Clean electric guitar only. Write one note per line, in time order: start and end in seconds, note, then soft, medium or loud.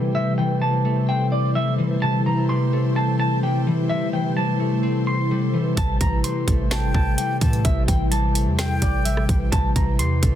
0.15 0.33 E5 loud
0.38 0.56 G5 medium
0.62 1.06 A5 medium
1.09 1.26 G5 loud
1.32 1.50 D5 medium
1.55 1.73 E5 medium
2.02 2.20 A5 loud
2.26 2.44 A#5 medium
2.49 2.93 C6 medium
2.96 3.14 A5 medium
3.20 3.37 A5 medium
3.43 3.61 G5 medium
3.89 4.07 E5 loud
4.13 4.31 G5 medium
4.37 5.03 A5 medium
5.07 5.73 C6 medium
5.78 5.95 A5 loud
6.01 6.19 A#5 medium
6.24 6.68 C6 medium
6.71 6.89 A5 medium
6.95 7.12 A5 medium
7.18 7.36 G5 medium
7.65 7.83 E5 medium
7.88 8.06 G5 medium
8.11 8.56 A5 medium
8.59 8.76 G5 medium
8.82 9.00 D5 medium
9.05 9.23 E5 medium
9.52 9.70 A5 loud
9.76 9.94 A#5 medium
9.99 10.35 C6 medium